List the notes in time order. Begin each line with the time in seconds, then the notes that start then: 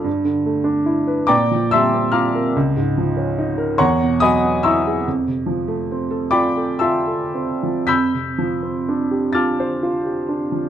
0.04 G2
0.24 D3
0.46 A3
0.64 D4
0.86 E4
1.07 B4
1.27 A#2 D5 G5 A#5 D6
1.51 F3
1.71 G3 E5 A5 C6 E6
1.94 C4
2.12 F4 F5 A#5 D6 F6
2.35 A#4
2.56 C#2
2.77 G#2
2.98 F3
3.17 C#4
3.39 D#4
3.58 A#4
3.78 E2 C#5 F#5 A#5 C#6
4.03 B2
4.20 F#3 D#5 G#5 B5 D#6
4.45 B3
4.63 E4 E5 A#5 C#6 E6
4.87 G#4
5.08 F2
5.27 C3
5.46 F3
5.68 A3
5.92 C4
6.11 A4
6.31 F4 D5 G5 B5 D6
6.57 A4
6.79 F4 E5 A5 C6 E6
7.07 A4
7.35 C4
7.63 F3
7.87 F2 B5 E6 G6 B6
8.14 C3
8.38 F3
8.62 C4
8.88 D4
9.11 G4
9.33 F4 A5 D6 F6 A6
9.60 C5
9.83 F4
10.05 G4
10.29 D4
10.52 F3